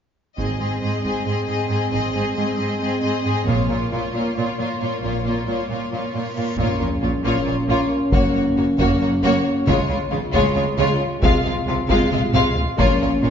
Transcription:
0.36 double bass section G#1, cello section G#2, viola section C4, violin section G#4 D#5, taiko
0.58 cello section G#2, viola section C4, violin section G#4 D#5
0.81 cello section G#2, viola section C4, violin section G#4 D#5
1.03 cello section G#2, viola section C4, violin section G#4 D#5, taiko
1.25 cello section G#2, viola section C4, violin section G#4 D#5
1.47 cello section G#2, viola section C4, violin section G#4 D#5
1.69 cello section G#2, viola section C4, violin section G#4 D#5
1.91 double bass section G#1, cello section G#2, viola section C4, violin section G#4 D#5
2.13 cello section G#2, viola section C4, violin section G#4 D#5
2.35 cello section G#2, viola section C4, violin section G#4 D#5
2.57 cello section G#2, viola section C4, violin section G#4 D#5
2.80 cello section G#2, viola section C4, violin section G#4 D#5
3.02 cello section G#2, viola section C4, violin section G#4 D#5
3.24 cello section G#2, viola section C4, violin section G#4 D#5
3.46 double bass section A#1, cello section A#2, viola section A#3, violin section F4 C#5, taiko
3.69 cello section A#2, viola section A#3, violin section F4 C#5
3.91 cello section A#2, viola section A#3, violin section F4 C#5
4.14 cello section A#2, viola section A#3, violin section F4 C#5
4.35 cello section A#2, viola section A#3, violin section F4 C#5
4.58 cello section A#2, viola section A#3, violin section F4 C#5
4.81 cello section A#2, viola section A#3, violin section F4 C#5
5.02 double bass section A#1, cello section A#2, viola section A#3, violin section F4 C#5, reverse cymbal
5.25 cello section A#2, viola section A#3, violin section F4 C#5
5.47 cello section A#2, viola section A#3, violin section F4 C#5
5.70 cello section A#2, viola section A#3, violin section F4 C#5
5.91 cello section A#2, viola section A#3, violin section F4 C#5
6.13 cello section A#2, viola section A#3, violin section F4 C#5
6.35 cello section A#2, viola section A#3, violin section F4 C#5
6.57 double bass section A#1, cello section A#2, viola section A#3, french horn section A#3 C#4, violin section F4 C#5, taiko, sub drop
6.79 double bass section A#1, cello section A#2, viola section A#3, violin section F4 C#5
7.01 double bass section A#1, cello section A#2, viola section A#3, violin section F4 C#5
7.23 double bass section A#1, cello section A#2, viola section A#3, violin section F4 C#5
7.45 double bass section A#1, cello section A#2, viola section A#3, violin section F4 C#5
7.68 double bass section A#1, cello section A#2, viola section A#3, violin section F4 C#5
8.12 double bass section F#1, cello section F#2, viola section A#3, violin section F#4 C#5, taiko
8.35 double bass section F#1, cello section F#2, viola section A#3, violin section F#4 C#5
8.57 double bass section F#1, cello section F#2, viola section A#3, violin section F#4 C#5
8.78 double bass section F#1, cello section F#2, viola section A#3, violin section F#4 C#5, taiko
9.00 double bass section F#1, cello section F#2, viola section A#3, violin section F#4 C#5
9.23 double bass section F#1, cello section F#2, viola section A#3, violin section F#4 C#5
9.67 double bass section C#2, cello section C#3, french horn section G#3 F4, viola section G#3, violin section F4 C#5, taiko
9.89 double bass section C#2, cello section C#3, viola section G#3, violin section F4 C#5
10.11 double bass section C#2, cello section C#3, viola section G#3, violin section F4 C#5
10.33 double bass section C#2, cello section C#3, viola section G#3, violin section F4 C#5, taiko
10.55 double bass section C#2, cello section C#3, viola section G#3, violin section F4 C#5
10.78 double bass section C#2, cello section C#3, viola section G#3, violin section F4 C#5
11.22 double bass section C2, cello section C3, viola section G#3, violin section F4 F5, taiko
11.44 double bass section C2, cello section C3, viola section G#3, violin section F4 F5
11.67 double bass section C2, cello section C3, viola section G#3, violin section F4 F5
11.89 double bass section C2, cello section C3, viola section G#3, violin section F4 F5, taiko
12.11 double bass section C2, cello section C3, viola section G#3, violin section F4 F5, taiko mid
12.33 double bass section C2, cello section C3, viola section G#3, violin section F4 F5, taiko mid
12.56 taiko low
12.77 double bass section A#1, cello section A#2, viola section A#3, french horn section A#3 C#4, violin section F4 C#5, taiko
13.00 double bass section A#1, cello section A#2, viola section A#3, violin section F4 C#5
13.22 double bass section A#1, cello section A#2, viola section A#3, violin section F4 C#5

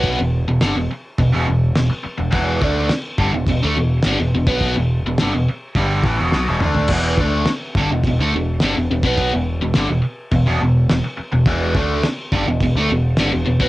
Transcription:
Already playing: picked electric bass B1, overdriven electric guitar B2 F#3 B3
0.04 kick, crash
0.19 picked electric bass E1, overdriven electric guitar E2 B2
0.48 picked electric bass E1, overdriven electric guitar E2 B2
0.61 picked electric bass G1, overdriven electric guitar G2 D3, snare, crash
0.75 picked electric bass E1, overdriven electric guitar E2 B2
0.90 muted picked electric bass stroke, muted overdriven electric guitar stroke
1.18 picked electric bass E1, overdriven electric guitar E2 B2, kick, crash
1.33 picked electric bass E1, overdriven electric guitar E2 B2
1.48 picked electric bass E1, overdriven electric guitar E2 B2
1.76 picked electric bass E1, overdriven electric guitar E2 B2, snare, crash
1.90 muted overdriven electric guitar stroke, muted picked electric bass stroke
2.04 muted overdriven electric guitar stroke, muted picked electric bass stroke
2.18 picked electric bass E1, overdriven electric guitar E2 B2
2.31 picked electric bass E1, overdriven electric guitar E2 B2 E3, kick, crash
2.61 picked electric bass D2, overdriven electric guitar D3 A3 D4, kick
2.89 muted overdriven electric guitar stroke, muted picked electric bass stroke, snare, crash
3.18 picked electric bass G1, overdriven electric guitar G2 D3, kick
3.33 picked electric bass E1, overdriven electric guitar E2 B2
3.46 picked electric bass E1, overdriven electric guitar E2 B2, kick, crash
3.63 picked electric bass D2, overdriven electric guitar D3 A3
3.76 picked electric bass E1, overdriven electric guitar E2 B2
4.03 picked electric bass G1, overdriven electric guitar G2, snare, crash
4.07 overdriven electric guitar D3
4.19 picked electric bass E1, overdriven electric guitar E2 B2
4.33 picked electric bass E1, overdriven electric guitar E2 B2
4.47 picked electric bass B1, overdriven electric guitar B2 F#3 B3, kick
4.61 kick, crash
4.76 picked electric bass E1, overdriven electric guitar E2 B2
5.05 picked electric bass E1, overdriven electric guitar E2 B2
5.18 picked electric bass G1, overdriven electric guitar G2 D3, snare, crash
5.33 picked electric bass E1, overdriven electric guitar E2 B2
5.48 muted overdriven electric guitar stroke, muted picked electric bass stroke
5.75 picked electric bass G1, overdriven electric guitar G2 D3 G3, kick, crash
6.04 picked electric bass A1, overdriven electric guitar A2 E3, kick
6.18 picked electric bass E1, overdriven electric guitar E2 B2
6.32 picked electric bass B1, overdriven electric guitar B2 F#3, snare
6.47 picked electric bass E1, overdriven electric guitar E2 B2
6.60 picked electric bass D2, overdriven electric guitar D3 A3 D4, mid tom
6.75 floor tom
6.88 picked electric bass E1, overdriven electric guitar E2 B2, kick, crash
6.92 overdriven electric guitar E3
7.17 picked electric bass D2, overdriven electric guitar D3 A3 D4, kick
7.46 muted overdriven electric guitar stroke, snare, crash
7.75 picked electric bass G1, overdriven electric guitar G2 D3, kick
7.90 picked electric bass E1, overdriven electric guitar E2 B2
8.04 picked electric bass E1, overdriven electric guitar E2 B2, kick, crash
8.19 picked electric bass D2, overdriven electric guitar D3 A3
8.33 picked electric bass E1, overdriven electric guitar E2 B2
8.60 picked electric bass G1, overdriven electric guitar G2 D3, snare, crash
8.76 picked electric bass E1, overdriven electric guitar E2 B2
8.90 picked electric bass E1, overdriven electric guitar E2 B2
9.03 picked electric bass B1, overdriven electric guitar B2 F#3 B3, kick
9.18 kick, crash
9.33 picked electric bass E1, overdriven electric guitar E2 B2
9.61 picked electric bass E1, overdriven electric guitar E2 B2
9.74 picked electric bass G1, overdriven electric guitar G2 D3, snare, crash
9.89 picked electric bass E1, overdriven electric guitar E2 B2
10.02 muted overdriven electric guitar stroke, muted picked electric bass stroke
10.31 picked electric bass E1, overdriven electric guitar E2 B2, kick, crash
10.46 picked electric bass E1, overdriven electric guitar E2 B2
10.61 picked electric bass E1, overdriven electric guitar E2 B2
10.89 picked electric bass E1, overdriven electric guitar E2 B2, snare, crash
11.04 muted overdriven electric guitar stroke
11.18 muted overdriven electric guitar stroke, muted picked electric bass stroke
11.32 picked electric bass E1, overdriven electric guitar E2 B2
11.46 picked electric bass E1, overdriven electric guitar E2 B2 E3, kick, crash
11.75 picked electric bass D2, overdriven electric guitar D3 A3 D4, kick
12.02 muted picked electric bass stroke, muted overdriven electric guitar stroke, snare, crash
12.32 picked electric bass G1, overdriven electric guitar G2 D3, kick
12.46 picked electric bass E1, overdriven electric guitar E2 B2
12.60 picked electric bass E1, overdriven electric guitar E2 B2, kick, crash
12.75 picked electric bass D2, overdriven electric guitar D3 A3
12.89 picked electric bass E1, overdriven electric guitar E2 B2
13.17 picked electric bass G1, overdriven electric guitar G2 D3, snare, crash
13.32 picked electric bass E1, overdriven electric guitar E2 B2
13.46 picked electric bass E1, overdriven electric guitar E2 B2
13.60 picked electric bass B1, overdriven electric guitar B2 F#3 B3, kick

